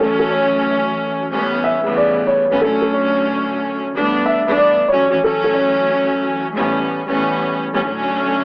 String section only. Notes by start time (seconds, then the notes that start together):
0.00 E3 F#3 A3 C#4
1.32 A2 E3 G3 B3 C#4
1.84 A2 C#3 E3 G3 B3
2.51 A2 E3 G3 B3 C#4
2.62 D3 F#3 A3 C#4
3.93 G2 E3 A3 B3 D4
4.45 G2 E3 A3 B3 D4
4.91 E3 F#3 A3 C#4
5.10 E3 F#3 A3 C#4
5.22 E3 F#3 A3 C#4
6.54 A2 E3 G3 B3 C#4
7.06 A2 E3 G3 B3 C#4
7.72 A2 E3 G3 B3 C#4
7.84 D3 F#3 A3 C#4